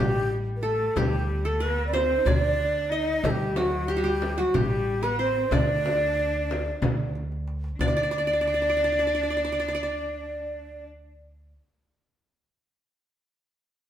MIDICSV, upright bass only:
0, 0, Header, 1, 2, 480
1, 0, Start_track
1, 0, Tempo, 651466
1, 707, Time_signature, 7, 3, 24, 8
1, 10238, End_track
2, 0, Start_track
2, 0, Title_t, "Upright bass"
2, 0, Program_c, 0, 32
2, 0, Note_on_c, 0, 33, 91
2, 635, Note_off_c, 0, 33, 0
2, 706, Note_on_c, 0, 38, 88
2, 1570, Note_off_c, 0, 38, 0
2, 1661, Note_on_c, 0, 38, 89
2, 2311, Note_off_c, 0, 38, 0
2, 2382, Note_on_c, 0, 38, 84
2, 3247, Note_off_c, 0, 38, 0
2, 3348, Note_on_c, 0, 33, 94
2, 3994, Note_off_c, 0, 33, 0
2, 4060, Note_on_c, 0, 38, 96
2, 4926, Note_off_c, 0, 38, 0
2, 5023, Note_on_c, 0, 38, 87
2, 5672, Note_off_c, 0, 38, 0
2, 5741, Note_on_c, 0, 38, 79
2, 8499, Note_off_c, 0, 38, 0
2, 10238, End_track
0, 0, End_of_file